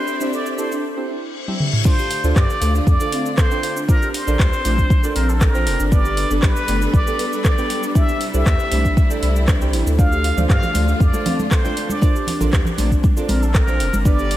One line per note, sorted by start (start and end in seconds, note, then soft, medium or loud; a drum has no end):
0.00 0.82 C4 medium
0.00 0.82 G4 medium
0.00 0.34 C5 loud
0.00 0.82 D5 medium
0.00 0.82 E5 medium
0.07 shaker soft
0.20 0.31 C4 loud
0.20 0.55 C4 medium
0.20 0.55 D4 medium
0.20 0.55 E4 medium
0.20 0.55 G4 medium
0.20 0.55 C5 medium
0.20 shaker medium
0.32 0.40 A4 medium
0.32 0.60 D5 medium
0.32 shaker soft
0.46 shaker soft
0.58 0.93 C4 medium
0.58 0.93 D4 medium
0.58 0.93 E4 medium
0.58 0.93 G4 medium
0.58 0.93 A4 medium
0.58 0.70 A4 medium
0.58 0.84 C5 medium
0.58 shaker medium
0.71 0.82 D4 medium
0.71 shaker soft
0.83 reverse cymbal medium
0.96 1.44 C4 medium
0.96 1.44 D4 medium
0.96 1.44 E4 medium
0.96 1.44 G4 medium
0.96 1.44 C5 medium
1.47 1.82 C4 medium
1.47 1.82 D4 medium
1.47 1.82 E4 medium
1.47 1.82 G4 medium
1.47 1.82 E5 medium
1.47 high tom soft
1.60 mid tom medium
1.73 mid tom medium
1.84 3.86 D3 medium
1.84 3.86 A3 medium
1.84 9.95 D4 medium
1.84 2.00 D4 loud
1.84 1.97 D4 medium
1.84 3.86 F4 medium
1.84 2.00 F4 medium
1.84 2.00 A4 medium
1.84 2.32 C5 loud
1.84 2.00 C5 medium
1.84 2.00 D5 loud
1.84 kick loud
1.84 crash loud
1.84 shaker loud
1.98 2.09 G4 medium
1.98 shaker medium
2.11 open hi-hat medium
2.11 shaker medium
2.24 2.33 D2 loud
2.24 2.58 D4 medium
2.24 2.58 F4 medium
2.24 2.58 A4 medium
2.24 2.35 A4 medium
2.24 2.58 C5 medium
2.24 2.58 D5 loud
2.24 shaker medium
2.36 2.46 G2 loud
2.36 2.48 G4 medium
2.36 2.83 D5 loud
2.36 kick loud
2.36 cross-stick loud
2.36 clap loud
2.36 shaker soft
2.50 shaker medium
2.61 2.80 D2 medium
2.61 2.69 A3 medium
2.61 2.97 D4 medium
2.61 2.97 F4 medium
2.61 2.97 A4 medium
2.61 2.97 C5 medium
2.61 2.97 D5 medium
2.61 open hi-hat medium
2.61 shaker medium
2.74 2.86 D4 medium
2.74 shaker medium
2.86 2.96 F2 loud
2.86 3.34 D5 loud
2.86 kick loud
2.86 shaker medium
3.00 3.48 D4 medium
3.00 3.48 F4 medium
3.00 3.11 A4 loud
3.00 3.48 A4 medium
3.00 3.48 C5 medium
3.00 3.48 D5 loud
3.00 shaker medium
3.12 3.24 C4 medium
3.12 open hi-hat medium
3.12 shaker medium
3.26 shaker medium
3.37 3.49 A4 loud
3.37 3.90 C5 loud
3.37 kick loud
3.37 cross-stick loud
3.37 clap loud
3.37 shaker medium
3.51 3.86 D4 medium
3.51 3.86 F4 medium
3.51 3.86 A4 medium
3.51 3.62 C5 medium
3.51 3.86 C5 medium
3.51 3.86 G5 loud
3.51 shaker medium
3.63 open hi-hat medium
3.63 shaker medium
3.76 3.87 D4 medium
3.76 shaker medium
3.88 5.90 C4 medium
3.88 4.00 D4 medium
3.88 4.03 D4 loud
3.88 4.03 F4 medium
3.88 4.15 A#4 loud
3.88 4.03 A#4 medium
3.88 4.03 C5 medium
3.88 4.03 D5 loud
3.88 kick loud
3.88 shaker medium
4.01 4.13 G4 medium
4.01 shaker medium
4.13 5.15 C5 loud
4.13 open hi-hat medium
4.13 shaker medium
4.27 4.36 A#1 loud
4.27 4.62 D4 medium
4.27 4.62 F4 medium
4.27 4.39 A4 medium
4.27 4.62 A#4 medium
4.27 4.62 C5 medium
4.27 4.62 D5 loud
4.27 shaker medium
4.39 4.49 D2 loud
4.39 kick loud
4.39 cross-stick loud
4.39 clap loud
4.39 shaker medium
4.53 shaker medium
4.64 4.84 A#1 loud
4.64 4.72 A3 medium
4.64 5.00 D4 medium
4.64 5.00 F4 medium
4.64 5.00 A#4 medium
4.64 5.00 C5 medium
4.64 5.00 D5 medium
4.64 open hi-hat medium
4.64 shaker loud
4.78 4.89 D4 medium
4.78 kick medium
4.78 shaker medium
4.90 kick loud
4.90 shaker medium
5.03 5.51 D4 medium
5.03 5.51 F4 medium
5.03 5.14 A4 loud
5.03 5.51 A#4 medium
5.03 5.51 C5 medium
5.03 5.51 D5 loud
5.03 shaker loud
5.15 5.68 A#1 loud
5.15 5.27 C4 medium
5.15 5.31 A#4 medium
5.15 open hi-hat medium
5.15 shaker medium
5.29 5.43 A4 medium
5.29 shaker medium
5.41 5.53 A4 loud
5.41 5.94 A#4 loud
5.41 kick loud
5.41 cross-stick loud
5.41 clap loud
5.41 shaker medium
5.54 5.89 D4 medium
5.54 5.89 F4 medium
5.54 5.89 A#4 medium
5.54 5.65 C5 medium
5.54 5.89 C5 medium
5.54 5.89 G5 loud
5.54 shaker medium
5.66 5.76 F1 medium
5.66 open hi-hat medium
5.66 shaker medium
5.79 6.25 G1 medium
5.79 5.90 D4 medium
5.79 shaker medium
5.91 9.95 G3 medium
5.91 6.06 B3 loud
5.91 6.06 D4 medium
5.91 6.04 D4 medium
5.91 6.07 G4 medium
5.91 7.93 A4 medium
5.91 6.06 B4 medium
5.91 7.93 B4 medium
5.91 6.07 D5 loud
5.91 6.44 D5 loud
5.91 kick loud
5.91 shaker loud
6.05 6.16 G4 medium
6.05 shaker medium
6.17 open hi-hat medium
6.17 shaker medium
6.30 6.39 G1 loud
6.30 6.65 B3 medium
6.30 6.65 D4 medium
6.30 6.65 G4 medium
6.30 6.42 A4 medium
6.30 6.65 B4 medium
6.30 6.65 D5 loud
6.30 shaker loud
6.42 6.52 B1 loud
6.42 6.55 G4 medium
6.42 6.93 B4 loud
6.42 kick loud
6.42 cross-stick loud
6.42 clap loud
6.42 shaker medium
6.56 shaker medium
6.68 6.87 G1 medium
6.68 6.75 A3 medium
6.68 7.04 B3 medium
6.68 7.04 D4 medium
6.68 7.04 G4 medium
6.68 7.04 B4 medium
6.68 7.04 D5 medium
6.68 open hi-hat medium
6.68 shaker loud
6.81 6.93 D4 medium
6.81 shaker medium
6.93 7.03 B1 loud
6.93 7.41 D5 loud
6.93 kick loud
6.93 shaker medium
7.07 7.55 B3 medium
7.07 7.55 D4 medium
7.07 7.54 G4 medium
7.07 7.18 A4 loud
7.07 7.55 B4 medium
7.07 7.55 D5 loud
7.07 shaker loud
7.19 7.31 B3 medium
7.19 open hi-hat medium
7.19 shaker medium
7.33 shaker medium
7.44 7.56 A4 loud
7.44 7.97 D5 loud
7.44 kick loud
7.44 cross-stick loud
7.44 clap loud
7.44 shaker loud
7.58 7.92 B3 medium
7.58 7.92 D4 medium
7.58 7.92 G4 medium
7.58 7.92 B4 medium
7.58 7.69 B4 medium
7.58 7.92 G5 medium
7.58 shaker medium
7.70 open hi-hat medium
7.70 shaker medium
7.83 7.94 D4 medium
7.83 shaker medium
7.95 9.97 C3 medium
7.95 8.07 D4 medium
7.95 8.10 D4 loud
7.95 8.10 E4 medium
7.95 9.97 E4 medium
7.95 8.10 G4 medium
7.95 8.10 C5 medium
7.95 8.10 D5 loud
7.95 8.33 E5 loud
7.95 kick loud
7.95 shaker loud
8.08 8.19 G4 medium
8.08 shaker medium
8.21 open hi-hat medium
8.21 shaker medium
8.33 8.43 C2 medium
8.33 8.68 D4 medium
8.33 8.68 E4 medium
8.33 8.68 G4 medium
8.33 8.45 A4 medium
8.33 8.68 C5 medium
8.33 8.68 D5 loud
8.33 9.32 E5 loud
8.33 shaker medium
8.46 8.56 E2 loud
8.46 kick loud
8.46 cross-stick loud
8.46 clap loud
8.46 shaker medium
8.60 shaker medium
8.71 8.90 C2 loud
8.71 8.79 A3 medium
8.71 9.07 D4 medium
8.71 9.07 E4 medium
8.71 9.07 G4 medium
8.71 9.07 C5 medium
8.71 9.07 D5 medium
8.71 open hi-hat medium
8.71 shaker loud
8.85 8.96 D4 medium
8.85 kick medium
8.85 shaker medium
8.97 kick loud
8.97 shaker medium
9.10 9.58 D4 medium
9.10 9.58 E4 medium
9.10 9.58 G4 medium
9.10 9.21 A4 loud
9.10 9.58 C5 medium
9.10 9.58 D5 loud
9.10 shaker medium
9.22 9.75 C2 loud
9.22 9.34 D5 medium
9.22 open hi-hat medium
9.22 shaker medium
9.36 shaker medium
9.48 9.55 D4 medium
9.48 kick loud
9.48 cross-stick loud
9.48 clap loud
9.48 shaker loud
9.61 9.73 D4 medium
9.61 9.96 D4 medium
9.61 9.96 E4 medium
9.61 9.96 G4 medium
9.61 9.96 C5 medium
9.61 9.96 G5 medium
9.61 shaker medium
9.73 9.83 A1 medium
9.73 9.85 E4 medium
9.73 open hi-hat medium
9.73 shaker medium
9.86 10.31 D2 medium
9.86 9.97 A4 medium
9.86 shaker loud
9.98 12.00 D3 medium
9.98 12.00 A3 medium
9.98 10.13 D4 loud
9.98 10.10 D4 medium
9.98 14.37 D4 medium
9.98 10.13 F4 medium
9.98 12.00 F4 medium
9.98 10.13 A4 medium
9.98 10.13 C5 medium
9.98 10.13 D5 loud
9.98 10.46 F5 loud
9.98 kick loud
9.98 muted conga medium
9.98 shaker medium
10.12 10.23 G4 medium
10.12 shaker medium
10.24 open hi-hat medium
10.24 shaker medium
10.37 10.46 D2 loud
10.37 10.72 D4 medium
10.37 10.72 F4 medium
10.37 10.72 A4 medium
10.37 10.72 C5 medium
10.37 10.72 D5 loud
10.37 muted conga soft
10.37 high conga medium
10.37 low conga medium
10.37 shaker medium
10.49 10.59 G2 loud
10.49 10.61 G4 medium
10.49 11.02 F5 loud
10.49 kick loud
10.49 cross-stick loud
10.49 clap loud
10.49 shaker medium
10.63 low conga loud
10.63 shaker medium
10.74 10.94 D2 loud
10.74 10.82 A3 medium
10.74 11.10 D4 medium
10.74 11.10 F4 medium
10.74 11.10 A4 medium
10.74 11.10 C5 medium
10.74 11.10 D5 medium
10.74 open hi-hat medium
10.74 muted conga soft
10.74 high conga medium
10.74 shaker medium
10.88 11.00 D4 medium
10.88 shaker medium
11.00 11.10 F2 loud
11.00 11.51 D5 loud
11.00 kick loud
11.00 shaker medium
11.13 11.61 D4 medium
11.13 11.61 F4 medium
11.13 11.61 A4 medium
11.13 11.24 A4 loud
11.13 11.61 C5 medium
11.13 11.61 D5 loud
11.13 muted conga soft
11.13 high conga medium
11.13 shaker medium
11.26 11.38 C4 medium
11.26 open hi-hat medium
11.26 low conga loud
11.26 shaker medium
11.39 high conga loud
11.39 shaker medium
11.51 11.63 A4 loud
11.51 11.91 C5 medium
11.51 kick loud
11.51 cross-stick loud
11.51 clap loud
11.51 shaker medium
11.64 11.99 D4 medium
11.64 11.99 F4 medium
11.64 11.99 A4 medium
11.64 11.99 C5 medium
11.64 11.75 C5 medium
11.64 11.99 G5 medium
11.64 muted conga medium
11.64 high conga loud
11.64 shaker medium
11.77 open hi-hat medium
11.77 shaker medium
11.89 12.00 D4 medium
11.89 12.41 D5 medium
11.89 high conga loud
11.89 shaker medium
12.02 14.04 C4 medium
12.02 12.14 D4 medium
12.02 12.17 D4 loud
12.02 12.17 F4 medium
12.02 12.17 A#4 medium
12.02 12.17 C5 medium
12.02 12.17 D5 loud
12.02 kick loud
12.02 muted conga medium
12.02 shaker medium
12.15 12.26 G4 medium
12.15 shaker medium
12.27 open hi-hat medium
12.27 low conga medium
12.27 shaker medium
12.40 12.50 A#1 loud
12.40 12.75 D4 medium
12.40 12.75 F4 medium
12.40 12.52 A4 medium
12.40 12.75 A#4 medium
12.40 12.75 C5 medium
12.40 12.75 D5 loud
12.40 muted conga soft
12.40 high conga medium
12.40 low conga loud
12.40 shaker medium
12.53 12.63 D2 loud
12.53 kick loud
12.53 cross-stick loud
12.53 clap loud
12.53 shaker soft
12.65 low conga loud
12.65 shaker medium
12.78 12.97 A#1 loud
12.78 12.86 A3 medium
12.78 13.14 D4 medium
12.78 13.14 F4 medium
12.78 13.14 A#4 medium
12.78 13.14 C5 medium
12.78 13.14 D5 medium
12.78 open hi-hat medium
12.78 muted conga medium
12.78 high conga medium
12.78 shaker medium
12.91 13.03 D4 medium
12.91 kick medium
12.91 shaker medium
13.03 kick loud
13.03 high conga medium
13.03 shaker medium
13.16 13.64 D4 medium
13.16 13.64 F4 medium
13.16 13.28 A4 loud
13.16 13.64 A#4 medium
13.16 13.64 C5 medium
13.16 13.64 D5 loud
13.16 muted conga soft
13.16 shaker medium
13.29 13.82 A#1 loud
13.29 13.41 C4 medium
13.29 13.44 A#4 medium
13.29 open hi-hat medium
13.29 high conga loud
13.29 shaker medium
13.42 13.57 A4 medium
13.42 shaker medium
13.54 13.67 A4 loud
13.54 14.07 A#4 medium
13.54 kick loud
13.54 cross-stick loud
13.54 clap loud
13.54 shaker medium
13.67 14.02 D4 medium
13.67 14.02 F4 medium
13.67 14.02 A#4 medium
13.67 14.02 C5 medium
13.67 13.79 C5 medium
13.67 14.02 G5 medium
13.67 muted conga soft
13.67 high conga medium
13.67 shaker soft
13.80 13.90 F1 medium
13.80 open hi-hat medium
13.80 shaker medium
13.93 14.37 G1 medium
13.93 14.04 D4 medium
13.93 high conga loud
13.93 shaker medium
14.05 14.37 G3 medium
14.05 14.20 B3 loud
14.05 14.20 D4 medium
14.05 14.17 D4 medium
14.05 14.20 G4 medium
14.05 14.37 A4 medium
14.05 14.37 B4 medium
14.05 14.20 B4 medium
14.05 14.20 D5 loud
14.05 14.37 D5 loud
14.05 kick loud
14.05 muted conga soft
14.05 shaker medium
14.19 14.30 G4 medium
14.19 shaker medium
14.31 open hi-hat medium
14.31 shaker medium